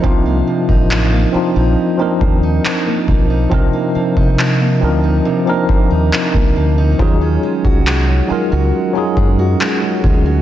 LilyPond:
<<
  \new Staff \with { instrumentName = "Tine electric piano" } { \time 4/4 \key ees \lydian \tempo 4 = 69 <f c' d' ees' f'>4~ <f c' d' ees' f'>16 r16 <f c' d' ees' f'>8. <f c' d' ees' bes'>4. r16 | <f c' d' ees' bes'>4~ <f c' d' ees' bes'>16 r16 <f c' d' ees' bes'>8. <f c' d' ees' bes'>4. r16 | <f ges des' ees' f' aes'>4~ <f ges des' ees' f' aes'>16 r16 <ges des' ees' f' bes'>8. <ges des' ees' f' aes'>4. r16 | }
  \new Staff \with { instrumentName = "Steel-string acoustic guitar" } { \time 4/4 \key ees \lydian <c f bes ees'>16 bes16 f16 ees'16 f16 bes16 f16 ees'8 bes16 f16 ees'16 f16 bes16 f16 ees'16 | c16 bes16 f16 ees'16 f16 bes16 f16 ees'16 c16 bes16 f16 ees'16 f16 bes16 f16 ees'16 | ees16 des'16 aes16 ges'16 aes16 des'16 aes16 ges'8 des'16 aes16 ges'16 aes16 des'16 aes16 ges'16 | }
  \new Staff \with { instrumentName = "Fingered electric bass" } { \clef bass \time 4/4 \key ees \lydian c,8 r16 a,,8. r16 bes,,16 r8 ees,8 r8 b,,8 | c,16 r8 c8. d,8 r8. ees,16 r16 c,16 d,8 | ees,8 r16 c,8. r16 des,16 r8 ges,8 r8 d,8 | }
  \new DrumStaff \with { instrumentName = "Drums" } \drummode { \time 4/4 bd8. bd16 hc4 r8 bd8 hc8 bd8 | bd8. bd16 hc4 r8 bd8 hc16 bd8. | bd8. bd16 hc4 r8 bd8 hc8 bd8 | }
>>